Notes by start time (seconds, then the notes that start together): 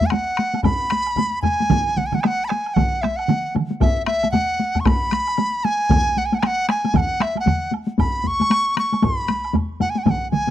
0.01 taiko low-mid, taiko high
0.06 G#5
0.10 F#5, taiko rim, taiko high, high woodblock
0.37 taiko rim, taiko high
0.54 taiko high, high woodblock
0.63 B5, taiko, taiko low-mid, taiko high, high woodblock
0.90 taiko rim, taiko high
1.06 high woodblock
1.16 taiko low-mid, taiko high, high woodblock
1.42 G#5, taiko low-mid, taiko high, high woodblock
1.60 taiko high
1.70 taiko, taiko mid, taiko high, high woodblock
1.96 F#5, taiko mid, taiko high
2.06 G#5
2.12 F#5, taiko mid, taiko high, high woodblock
2.21 G#5, taiko rim, high woodblock
2.25 F#5, taiko high
2.45 G#5 B5
2.49 taiko rim, taiko high
2.66 high woodblock
2.74 F#5, taiko, taiko mid, taiko high, high woodblock
3.02 E5, taiko rim, taiko high
3.16 F#5, high woodblock
3.29 taiko mid, taiko high, high woodblock
3.55 taiko mid, taiko high, high woodblock
3.71 taiko high
3.81 E5, taiko, taiko low-mid, taiko high, high woodblock
4.06 E5, taiko rim, taiko high
4.23 taiko high, high woodblock
4.31 F#5, taiko low-mid, taiko high, high woodblock
4.60 taiko high
4.75 taiko low-mid, taiko high, high woodblock
4.80 C#6
4.85 B5, taiko rim, taiko, taiko high, high woodblock
5.11 taiko rim, taiko high
5.27 high woodblock
5.38 taiko high, high woodblock
5.64 G#5, taiko high, high woodblock
5.90 taiko, taiko low-mid, taiko mid, taiko high, high woodblock
6.17 F#5, taiko high
6.26 G#5
6.32 F#5, taiko high, high woodblock
6.39 G#5, taiko rim, taiko high, high woodblock
6.46 F#5
6.69 G#5, taiko rim, taiko high
6.85 taiko high, high woodblock
6.94 F#5, taiko, taiko low-mid, taiko mid, taiko high, high woodblock
7.20 E5, taiko rim, taiko high
7.35 taiko high, high woodblock
7.40 F#5
7.46 taiko low-mid, taiko mid, taiko high, high woodblock
7.71 taiko high, high woodblock
7.87 taiko high
7.98 B5, taiko, taiko low-mid, taiko high, high woodblock
8.24 C#6, taiko low-mid, taiko high
8.40 taiko low-mid, taiko high, high woodblock
8.50 taiko rim, taiko high, high woodblock
8.77 C#6, taiko rim, taiko high
8.93 taiko high, high woodblock
9.02 B5, taiko, taiko low-mid, taiko high, high woodblock
9.28 taiko rim, taiko high
9.45 high woodblock
9.53 taiko low-mid, taiko high, high woodblock
9.80 F#5, taiko low-mid, taiko high, high woodblock
9.90 G#5
9.95 F#5, taiko high
10.04 G#5, taiko, taiko mid, taiko high, high woodblock
10.10 F#5
10.31 G#5, taiko mid, taiko high
10.47 taiko high